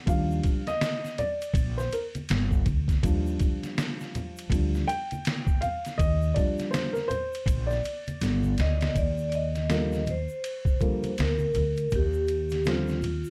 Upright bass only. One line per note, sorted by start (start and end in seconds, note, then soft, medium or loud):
0.07 0.39 D#2 medium
1.54 1.86 A#1 loud
2.30 2.61 G1 medium
2.66 2.98 D2 medium
3.03 3.35 D#2 loud
4.50 4.82 D2 loud
5.99 6.31 D#2 loud
7.46 7.79 A#1 loud
8.21 8.53 G1 medium
8.59 8.91 D2 medium
8.96 10.26 D#2 medium
11.19 11.50 D2 medium
11.56 11.87 D2 medium
11.93 13.22 D#2 loud